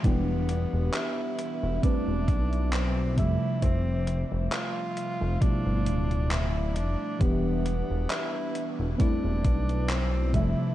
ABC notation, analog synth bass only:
X:1
M:4/4
L:1/16
Q:"Swing 16ths" 1/4=67
K:Ephr
V:1 name="Analog synth bass" clef=bass
E,,,3 E,,, z3 E,,, E,,, E,,, B,,,4 F,,, z | F,,,3 F,,, z3 F,,, z G,,, D,,,4 F,,, z | E,,,3 E,,, z3 E,,, E,,, E,,, B,,,4 F,,, z |]